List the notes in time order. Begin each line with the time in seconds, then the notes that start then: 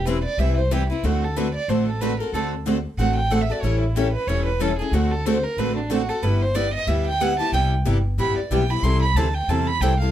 Already playing: E1
0.05 E3 G3 C4 E4 B4
0.24 D5
0.37 C2 E3 G3 C4 E4 B4 E5
0.57 C5
0.71 E3 G3 C4 E4 G4 B4
0.90 C4 E4 B4
1.03 D2 D3 A3 C4 F#4 A4
1.24 A4
1.36 D3 A3 C4 F#4 A4 B4
1.55 D5
1.68 A1 D3 A3 C4 F#4 A4 C5
1.88 A4
2.01 D3 A3 C4 F#4 A4 B4
2.19 C4 F#4 A4 A#4
2.33 D2 D3 A3 C4 F#4 A4
2.66 D3 A3 C4 F#4 A4
2.97 A1 D3 A3 C4 F#4 A4 F#5
3.16 G5
3.30 D3 A3 C4 F#4 A4 F#5
3.41 E5
3.50 C4 F#4 A4 D5
3.62 A1 E3 G3 C#4 E4 A4 C#5
3.80 E4
3.96 E3 G3 C#4 E4 G4 A4
4.13 B4
4.27 E1 E3 G3 C#4 E4 A4 C#5
4.46 B4
4.60 E3 G3 C#4 E4 A4
4.79 C#4 E4 G#4 A4
4.92 D2 D3 A3 C4 F#4 A4
5.11 A4
5.26 D3 A3 C4 F#4 A4 C5
5.44 A#4
5.57 A1 D3 A3 C4 F#4 A4 B4
5.77 D4
5.90 D3 A3 C4 F#4 A4
6.09 C4 F#4 A4
6.22 G1 G3 B3 E4 G4 B4
6.42 C5
6.55 G3 B3 E4 G4 D5
6.74 D#5
6.87 D2 G3 B3 E4 G4 E5
7.07 G5
7.20 G3 B3 E4 G4 F#5
7.39 B3 E4 G4 A5
7.52 C2 C3 G3 B3 E4 G4 G5
7.85 G1 C3 G3 B3 E4 G4
8.18 A1 C3 G3 B3 E4 G4 B5
8.37 D5, muted upright bass stroke
8.51 B1 C3 G3 B3 E4 G4 G5
8.70 B3 E4 G4 B5
8.82 C2 C3 E3 G3 C4 E4 A4 C6
9.02 B5
9.14 D2 C3 E3 G3 C4 E4 A4 A5
9.34 G5
9.48 E2 C3 E3 G3 C4 E4 A4 A5
9.67 B5
9.80 C2 C3 E3 G3 C4 E4 A4 G5
10.00 G3 C4 E4 A4 F5